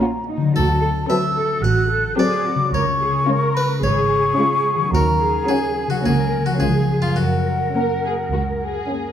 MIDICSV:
0, 0, Header, 1, 9, 480
1, 0, Start_track
1, 0, Key_signature, 6, "major"
1, 0, Tempo, 548948
1, 476, Time_signature, 4, 2, 24, 8
1, 5280, Tempo, 570342
1, 7874, End_track
2, 0, Start_track
2, 0, Title_t, "Flute"
2, 0, Program_c, 0, 73
2, 0, Note_on_c, 0, 82, 86
2, 224, Note_off_c, 0, 82, 0
2, 489, Note_on_c, 0, 81, 87
2, 926, Note_off_c, 0, 81, 0
2, 947, Note_on_c, 0, 88, 90
2, 1420, Note_on_c, 0, 90, 82
2, 1433, Note_off_c, 0, 88, 0
2, 1898, Note_off_c, 0, 90, 0
2, 1903, Note_on_c, 0, 86, 90
2, 2374, Note_off_c, 0, 86, 0
2, 2383, Note_on_c, 0, 85, 102
2, 3099, Note_on_c, 0, 83, 86
2, 3113, Note_off_c, 0, 85, 0
2, 3340, Note_off_c, 0, 83, 0
2, 3349, Note_on_c, 0, 85, 103
2, 4294, Note_off_c, 0, 85, 0
2, 4312, Note_on_c, 0, 82, 88
2, 4804, Note_on_c, 0, 80, 76
2, 4817, Note_off_c, 0, 82, 0
2, 5160, Note_off_c, 0, 80, 0
2, 5165, Note_on_c, 0, 78, 65
2, 5218, Note_off_c, 0, 78, 0
2, 5298, Note_on_c, 0, 80, 76
2, 5635, Note_off_c, 0, 80, 0
2, 5643, Note_on_c, 0, 78, 62
2, 5694, Note_off_c, 0, 78, 0
2, 5756, Note_on_c, 0, 80, 68
2, 6122, Note_on_c, 0, 77, 55
2, 6135, Note_off_c, 0, 80, 0
2, 6233, Note_off_c, 0, 77, 0
2, 6238, Note_on_c, 0, 78, 65
2, 7657, Note_off_c, 0, 78, 0
2, 7874, End_track
3, 0, Start_track
3, 0, Title_t, "Harpsichord"
3, 0, Program_c, 1, 6
3, 0, Note_on_c, 1, 70, 61
3, 206, Note_off_c, 1, 70, 0
3, 489, Note_on_c, 1, 69, 66
3, 925, Note_off_c, 1, 69, 0
3, 960, Note_on_c, 1, 76, 83
3, 1399, Note_off_c, 1, 76, 0
3, 1436, Note_on_c, 1, 78, 73
3, 1876, Note_off_c, 1, 78, 0
3, 1917, Note_on_c, 1, 74, 79
3, 2358, Note_off_c, 1, 74, 0
3, 2399, Note_on_c, 1, 73, 70
3, 3076, Note_off_c, 1, 73, 0
3, 3120, Note_on_c, 1, 71, 76
3, 3335, Note_off_c, 1, 71, 0
3, 3353, Note_on_c, 1, 73, 83
3, 4281, Note_off_c, 1, 73, 0
3, 4326, Note_on_c, 1, 70, 70
3, 4771, Note_off_c, 1, 70, 0
3, 4796, Note_on_c, 1, 68, 62
3, 5135, Note_off_c, 1, 68, 0
3, 5159, Note_on_c, 1, 66, 53
3, 5273, Note_off_c, 1, 66, 0
3, 5295, Note_on_c, 1, 68, 67
3, 5616, Note_off_c, 1, 68, 0
3, 5636, Note_on_c, 1, 66, 47
3, 5745, Note_off_c, 1, 66, 0
3, 5752, Note_on_c, 1, 68, 55
3, 6086, Note_off_c, 1, 68, 0
3, 6106, Note_on_c, 1, 65, 45
3, 6221, Note_off_c, 1, 65, 0
3, 6225, Note_on_c, 1, 66, 48
3, 7646, Note_off_c, 1, 66, 0
3, 7874, End_track
4, 0, Start_track
4, 0, Title_t, "Cello section"
4, 0, Program_c, 2, 48
4, 5, Note_on_c, 2, 65, 58
4, 74, Note_off_c, 2, 65, 0
4, 243, Note_on_c, 2, 63, 58
4, 474, Note_off_c, 2, 63, 0
4, 475, Note_on_c, 2, 66, 66
4, 711, Note_on_c, 2, 69, 65
4, 714, Note_off_c, 2, 66, 0
4, 781, Note_off_c, 2, 69, 0
4, 950, Note_on_c, 2, 71, 67
4, 1020, Note_off_c, 2, 71, 0
4, 1187, Note_on_c, 2, 69, 65
4, 1418, Note_on_c, 2, 66, 69
4, 1421, Note_off_c, 2, 69, 0
4, 1661, Note_off_c, 2, 66, 0
4, 1661, Note_on_c, 2, 69, 58
4, 1898, Note_off_c, 2, 69, 0
4, 1901, Note_on_c, 2, 68, 65
4, 2138, Note_off_c, 2, 68, 0
4, 2144, Note_on_c, 2, 66, 59
4, 2384, Note_off_c, 2, 66, 0
4, 2385, Note_on_c, 2, 70, 75
4, 2455, Note_off_c, 2, 70, 0
4, 2620, Note_on_c, 2, 68, 56
4, 2858, Note_off_c, 2, 68, 0
4, 2863, Note_on_c, 2, 70, 71
4, 3332, Note_off_c, 2, 70, 0
4, 3350, Note_on_c, 2, 68, 73
4, 4295, Note_off_c, 2, 68, 0
4, 4309, Note_on_c, 2, 66, 63
4, 4379, Note_off_c, 2, 66, 0
4, 4549, Note_on_c, 2, 68, 64
4, 5265, Note_off_c, 2, 68, 0
4, 5281, Note_on_c, 2, 70, 61
4, 5742, Note_off_c, 2, 70, 0
4, 5752, Note_on_c, 2, 68, 55
4, 6223, Note_off_c, 2, 68, 0
4, 6231, Note_on_c, 2, 70, 56
4, 7874, Note_off_c, 2, 70, 0
4, 7874, End_track
5, 0, Start_track
5, 0, Title_t, "Violin section"
5, 0, Program_c, 3, 48
5, 11, Note_on_c, 3, 66, 60
5, 360, Note_off_c, 3, 66, 0
5, 956, Note_on_c, 3, 69, 61
5, 1308, Note_off_c, 3, 69, 0
5, 1905, Note_on_c, 3, 69, 66
5, 2262, Note_off_c, 3, 69, 0
5, 2872, Note_on_c, 3, 65, 63
5, 3224, Note_off_c, 3, 65, 0
5, 3834, Note_on_c, 3, 65, 61
5, 4190, Note_off_c, 3, 65, 0
5, 4797, Note_on_c, 3, 66, 63
5, 5158, Note_off_c, 3, 66, 0
5, 5293, Note_on_c, 3, 66, 52
5, 5637, Note_off_c, 3, 66, 0
5, 5764, Note_on_c, 3, 65, 50
5, 6115, Note_off_c, 3, 65, 0
5, 6730, Note_on_c, 3, 70, 53
5, 6951, Note_off_c, 3, 70, 0
5, 6977, Note_on_c, 3, 68, 47
5, 7044, Note_off_c, 3, 68, 0
5, 7212, Note_on_c, 3, 66, 43
5, 7280, Note_off_c, 3, 66, 0
5, 7457, Note_on_c, 3, 68, 51
5, 7874, Note_off_c, 3, 68, 0
5, 7874, End_track
6, 0, Start_track
6, 0, Title_t, "Violin section"
6, 0, Program_c, 4, 48
6, 1, Note_on_c, 4, 61, 63
6, 355, Note_off_c, 4, 61, 0
6, 953, Note_on_c, 4, 60, 61
6, 1306, Note_off_c, 4, 60, 0
6, 1905, Note_on_c, 4, 60, 68
6, 2262, Note_off_c, 4, 60, 0
6, 2874, Note_on_c, 4, 61, 62
6, 3225, Note_off_c, 4, 61, 0
6, 3819, Note_on_c, 4, 61, 65
6, 4183, Note_off_c, 4, 61, 0
6, 4794, Note_on_c, 4, 61, 62
6, 5156, Note_off_c, 4, 61, 0
6, 5286, Note_on_c, 4, 61, 56
6, 5633, Note_off_c, 4, 61, 0
6, 5751, Note_on_c, 4, 61, 52
6, 6108, Note_off_c, 4, 61, 0
6, 6721, Note_on_c, 4, 61, 46
6, 7081, Note_off_c, 4, 61, 0
6, 7680, Note_on_c, 4, 61, 43
6, 7874, Note_off_c, 4, 61, 0
6, 7874, End_track
7, 0, Start_track
7, 0, Title_t, "Harp"
7, 0, Program_c, 5, 46
7, 0, Note_on_c, 5, 51, 53
7, 0, Note_on_c, 5, 58, 42
7, 0, Note_on_c, 5, 61, 42
7, 0, Note_on_c, 5, 66, 43
7, 321, Note_on_c, 5, 50, 58
7, 359, Note_on_c, 5, 54, 47
7, 398, Note_on_c, 5, 60, 46
7, 418, Note_off_c, 5, 51, 0
7, 437, Note_off_c, 5, 58, 0
7, 439, Note_on_c, 5, 69, 45
7, 458, Note_off_c, 5, 61, 0
7, 1946, Note_off_c, 5, 66, 0
7, 2231, Note_on_c, 5, 49, 56
7, 2273, Note_on_c, 5, 56, 45
7, 2311, Note_on_c, 5, 61, 48
7, 2326, Note_off_c, 5, 50, 0
7, 2346, Note_off_c, 5, 54, 0
7, 2349, Note_on_c, 5, 65, 46
7, 2365, Note_off_c, 5, 60, 0
7, 2386, Note_off_c, 5, 69, 0
7, 4157, Note_on_c, 5, 51, 58
7, 4195, Note_on_c, 5, 54, 48
7, 4222, Note_off_c, 5, 61, 0
7, 4232, Note_on_c, 5, 61, 43
7, 4253, Note_off_c, 5, 49, 0
7, 4272, Note_on_c, 5, 70, 46
7, 4274, Note_off_c, 5, 56, 0
7, 4312, Note_off_c, 5, 65, 0
7, 5132, Note_on_c, 5, 49, 48
7, 5160, Note_off_c, 5, 54, 0
7, 5170, Note_on_c, 5, 54, 42
7, 5200, Note_off_c, 5, 61, 0
7, 5210, Note_on_c, 5, 61, 42
7, 5224, Note_off_c, 5, 51, 0
7, 5240, Note_off_c, 5, 70, 0
7, 5251, Note_on_c, 5, 70, 40
7, 5592, Note_off_c, 5, 49, 0
7, 5602, Note_on_c, 5, 49, 46
7, 5640, Note_on_c, 5, 53, 36
7, 5670, Note_off_c, 5, 61, 0
7, 5680, Note_on_c, 5, 61, 36
7, 5717, Note_off_c, 5, 54, 0
7, 5718, Note_on_c, 5, 68, 35
7, 5756, Note_off_c, 5, 70, 0
7, 6079, Note_on_c, 5, 42, 39
7, 6120, Note_on_c, 5, 54, 34
7, 6145, Note_off_c, 5, 61, 0
7, 6155, Note_on_c, 5, 61, 33
7, 6177, Note_off_c, 5, 49, 0
7, 6194, Note_on_c, 5, 70, 37
7, 6195, Note_off_c, 5, 53, 0
7, 6235, Note_off_c, 5, 68, 0
7, 7874, Note_off_c, 5, 42, 0
7, 7874, Note_off_c, 5, 54, 0
7, 7874, Note_off_c, 5, 61, 0
7, 7874, Note_off_c, 5, 70, 0
7, 7874, End_track
8, 0, Start_track
8, 0, Title_t, "Viola section"
8, 0, Program_c, 6, 48
8, 0, Note_on_c, 6, 58, 58
8, 350, Note_off_c, 6, 58, 0
8, 954, Note_on_c, 6, 54, 65
8, 1307, Note_off_c, 6, 54, 0
8, 1906, Note_on_c, 6, 54, 65
8, 2262, Note_off_c, 6, 54, 0
8, 2868, Note_on_c, 6, 56, 68
8, 3222, Note_off_c, 6, 56, 0
8, 3832, Note_on_c, 6, 56, 64
8, 4189, Note_off_c, 6, 56, 0
8, 4798, Note_on_c, 6, 54, 57
8, 5159, Note_off_c, 6, 54, 0
8, 5281, Note_on_c, 6, 58, 50
8, 5631, Note_off_c, 6, 58, 0
8, 5754, Note_on_c, 6, 56, 48
8, 6109, Note_off_c, 6, 56, 0
8, 6722, Note_on_c, 6, 58, 43
8, 7082, Note_off_c, 6, 58, 0
8, 7692, Note_on_c, 6, 58, 42
8, 7874, Note_off_c, 6, 58, 0
8, 7874, End_track
9, 0, Start_track
9, 0, Title_t, "Double bass section"
9, 0, Program_c, 7, 48
9, 481, Note_on_c, 7, 38, 67
9, 855, Note_off_c, 7, 38, 0
9, 1432, Note_on_c, 7, 33, 78
9, 1807, Note_off_c, 7, 33, 0
9, 2390, Note_on_c, 7, 37, 70
9, 2768, Note_off_c, 7, 37, 0
9, 3345, Note_on_c, 7, 32, 72
9, 3725, Note_off_c, 7, 32, 0
9, 4311, Note_on_c, 7, 39, 72
9, 4695, Note_off_c, 7, 39, 0
9, 5281, Note_on_c, 7, 37, 64
9, 5653, Note_off_c, 7, 37, 0
9, 5755, Note_on_c, 7, 37, 57
9, 6132, Note_off_c, 7, 37, 0
9, 6229, Note_on_c, 7, 42, 49
9, 6616, Note_off_c, 7, 42, 0
9, 7202, Note_on_c, 7, 37, 48
9, 7582, Note_off_c, 7, 37, 0
9, 7874, End_track
0, 0, End_of_file